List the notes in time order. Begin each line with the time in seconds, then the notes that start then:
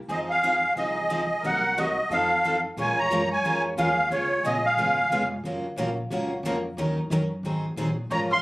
0.08 F2 F3 C4 D#4 G#4 D#5
0.28 G#4 F5
0.43 F3 C4 D#4 G#4
0.76 C2 F3 C4 D#4 G#4 D#5
1.10 F3 C4 D#4 G#4
1.43 C2 C3 F#3 A#3 D#4 A#4 F#5
1.78 C3 F#3 A#3 D#4 F#4 A#4 D#5
2.10 F2 F3 C4 D#4 A4 F5
2.45 F3 C4 D#4 A4
2.77 A#2 F3 G#3 C#4 F4 A#4 C#5
2.81 G#5
2.97 C#5 A#5, muted upright bass stroke
3.10 F#2 F3 G#3 C#4 F4 A#4
3.31 C#5 G#5
3.44 F2 F3 G#3 C#4 F4 A#4
3.77 D#2 F3 G#3 C#4 F4 G#4 A#4 F5
4.11 C#2 C#3 G#3 B3 F4 G#4 C#5
4.44 A#1 C#3 G#3 B3 F4 G#4 D#5
4.64 G#4 F5
4.77 G#1 C#3 G#3 B3 F4 G#4
5.10 F1 C#3 G#3 B3 F4 G#4
5.44 F#1 C#3 F3 F#3 A#3 C#4 F4 F#4 A#4
5.64 muted upright bass stroke
5.76 A#1 C#3 F3 F#3 A#3 C#4 F4 F#4 A#4
6.10 C#2 C#3 F3 F#3 A#3 C#4 F4 F#4 A#4
6.43 F2 C#3 F3 F#3 A#3 C#4 F4 F#4 A#4
6.77 D#2 D#3 F#3 C#4 D#4 A#4
7.10 F#2 D#3 F#3 C#4 D#4 A#4
7.43 G#2 D#3 F#3 C4 D#4 G#4
7.77 A#2 D#3 F#3 C4 D#4 G#4
8.10 G#2 C#3 F3 G#3 A#3 C#4 F4 A#4 C#5 A#5
8.30 F5 C6